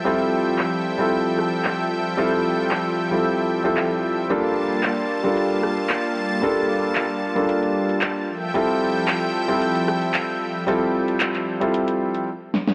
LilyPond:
<<
  \new Staff \with { instrumentName = "Analog synth pad" } { \time 4/4 \key f \major \tempo 4 = 113 <f a' e'' g''>1~ | <f a' e'' g''>1 | <g bes f' a''>1~ | <g bes f' a''>2.~ <g bes f' a''>8 <f a' e'' g''>8~ |
<f a' e'' g''>1~ | <f a' e'' g''>2. r4 | }
  \new Staff \with { instrumentName = "Grand piano" } { \time 4/4 \key f \major <g c' e' f' a'>4.~ <g c' e' f' a'>16 <g c' e' f' a'>2~ <g c' e' f' a'>16 | <g c' e' f' a'>4.~ <g c' e' f' a'>16 <g c' e' f' a'>4 <g c' e' f' a'>4~ <g c' e' f' a'>16 | <g bes d' f' a'>4.~ <g bes d' f' a'>16 <g bes d' f' a'>2~ <g bes d' f' a'>16 | <g bes d' f' a'>4.~ <g bes d' f' a'>16 <g bes d' f' a'>4.~ <g bes d' f' a'>16 r8 |
<g c' e' f' a'>4.~ <g c' e' f' a'>16 <g c' e' f' a'>2~ <g c' e' f' a'>16 | <g c' e' f' a'>4.~ <g c' e' f' a'>16 <g c' e' f' a'>4~ <g c' e' f' a'>16 r4 | }
  \new DrumStaff \with { instrumentName = "Drums" } \drummode { \time 4/4 hh4 <hc hh>8. hh16 hh16 hh16 ss16 hh16 <hc hh>4 | hh4 <hc hh>16 hh8 hh16 hh16 hh8 hh16 <hc hh>8. hh16 | hh4 <hc hh>8. hh16 hh16 hh16 ss16 hh16 <hc hh>4 | hh4 <hc hh>8. hh16 hh16 hh8 hh16 <hc hh>4 |
hh4 <hc hh>8. hh16 hh16 hh16 ss16 hh16 <hc hh>4 | hh8. hh16 <hc hh>16 <hc hh>8 hh16 hh16 hh8 hh16 r8 sn16 sn16 | }
>>